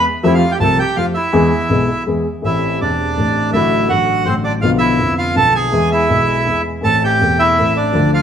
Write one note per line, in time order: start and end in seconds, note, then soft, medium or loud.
0.23 0.40 F2 medium
0.23 0.40 F3 medium
0.23 0.40 A3 medium
0.23 0.40 C4 medium
0.23 0.34 E4 medium
0.23 0.40 G4 medium
0.23 0.33 E5 medium
0.34 0.53 F4 medium
0.34 0.51 F5 medium
0.52 0.58 G4 medium
0.52 0.56 G5 medium
0.60 0.76 C2 medium
0.60 0.76 C3 medium
0.60 0.76 F3 soft
0.60 0.76 A3 soft
0.60 0.76 C4 soft
0.60 0.76 G4 medium
0.60 0.80 A4 medium
0.60 0.78 A5 medium
0.79 0.97 G4 medium
0.79 0.96 G5 medium
0.96 1.12 F2 medium
0.96 1.13 F3 medium
0.96 1.12 A3 soft
0.96 1.13 C4 soft
0.96 1.06 F4 medium
0.96 1.13 G4 medium
0.96 1.05 F5 medium
1.14 2.04 E4 medium
1.14 2.03 E5 medium
1.33 1.49 E2 medium
1.33 1.49 E3 medium
1.33 1.49 G#3 medium
1.33 1.49 B3 medium
1.33 1.49 G#4 medium
1.69 1.85 B1 medium
1.69 1.86 B2 medium
1.69 1.86 E3 soft
1.69 1.85 G#3 soft
1.69 1.86 B3 soft
1.69 1.86 G#4 medium
2.06 2.23 E2 medium
2.06 2.23 E3 medium
2.06 2.23 G#3 soft
2.06 2.23 B3 soft
2.06 2.23 G#4 medium
2.41 2.79 A1 medium
2.41 2.79 A2 medium
2.41 2.78 E3 soft
2.41 2.79 A3 soft
2.41 2.80 C4 soft
2.41 2.80 G4 medium
2.41 2.79 E5 medium
2.46 2.80 E4 medium
2.79 3.16 E1 soft
2.79 3.16 E2 soft
2.79 3.13 E3 soft
2.79 3.15 A3 soft
2.79 3.16 C4 soft
2.79 3.51 D4 medium
2.79 3.17 G4 soft
2.79 3.50 D5 medium
3.15 3.52 A1 soft
3.15 3.50 A2 soft
3.15 3.51 E3 soft
3.15 3.52 A3 soft
3.15 3.53 C4 soft
3.19 3.54 G4 soft
3.51 3.89 A1 medium
3.51 3.53 A2 medium
3.51 3.87 A2 medium
3.51 3.87 D3 soft
3.51 3.89 F#3 soft
3.51 3.89 A3 soft
3.51 3.88 E4 medium
3.51 3.91 E5 medium
3.56 3.90 F#4 medium
3.88 4.25 A1 soft
3.88 4.23 A2 soft
3.88 4.24 D3 soft
3.88 4.25 F#3 soft
3.88 4.26 A3 soft
3.88 4.24 F#4 medium
3.88 4.28 F#5 medium
4.25 4.62 A1 soft
4.25 4.61 A2 soft
4.25 4.60 D3 soft
4.25 4.62 F#3 soft
4.25 4.62 A3 soft
4.25 4.35 C4 medium
4.25 4.62 F#4 soft
4.25 4.34 C5 medium
4.44 4.53 D4 medium
4.44 4.53 D5 medium
4.61 4.98 B1 medium
4.61 4.98 B2 medium
4.61 4.96 D3 medium
4.61 4.97 F3 soft
4.61 4.98 B3 soft
4.61 4.70 F4 medium
4.61 4.99 F4 medium
4.61 4.70 F5 medium
4.78 5.14 E4 medium
4.78 5.14 E5 medium
4.97 5.34 F1 soft
4.97 5.34 F2 soft
4.97 5.32 D3 soft
4.97 5.33 F3 soft
4.97 5.35 B3 soft
5.18 5.36 F4 medium
5.18 5.35 F5 medium
5.34 5.71 B1 soft
5.34 5.71 B2 soft
5.34 5.70 D3 soft
5.34 5.70 F3 soft
5.34 5.71 B3 soft
5.34 5.72 F4 soft
5.34 5.54 A4 medium
5.34 5.54 A5 loud
5.56 5.90 G#4 medium
5.56 5.89 G#5 medium
5.71 6.07 E2 medium
5.71 6.06 E3 medium
5.71 6.07 G#3 soft
5.71 6.07 B3 soft
5.71 6.08 G#4 medium
5.92 6.62 E4 medium
5.92 6.61 E5 medium
6.07 6.45 B1 soft
6.07 6.44 B2 soft
6.07 6.43 E3 soft
6.07 6.44 G#3 soft
6.07 6.45 B3 soft
6.12 6.46 G#4 soft
6.46 6.82 E2 soft
6.46 6.79 E3 soft
6.46 6.81 G#3 soft
6.46 6.82 B3 soft
6.46 6.83 G#4 soft
6.81 7.19 A1 medium
6.81 7.18 A2 medium
6.81 7.17 E3 medium
6.81 7.18 A3 soft
6.81 7.19 C4 soft
6.81 7.19 A4 medium
6.81 7.01 A4 medium
6.81 7.03 A5 medium
7.04 7.38 G4 medium
7.04 7.41 G5 medium
7.19 7.56 E1 soft
7.19 7.56 E2 soft
7.19 7.55 E3 soft
7.19 7.56 A3 soft
7.19 7.56 C4 soft
7.23 7.57 A4 soft
7.39 7.74 E4 medium
7.39 7.77 E5 medium
7.56 7.93 A1 soft
7.56 7.93 A2 soft
7.56 7.92 E3 soft
7.56 7.92 A3 soft
7.56 7.93 C4 soft
7.56 7.94 A4 soft
7.77 8.10 D4 medium
7.77 8.11 D5 medium
7.93 8.22 D2 medium
7.93 8.22 D3 medium
7.93 8.22 F3 medium
7.93 8.22 A3 soft
7.93 8.22 D4 medium
7.97 8.22 A4 medium
8.14 8.22 F4 medium
8.14 8.22 F5 medium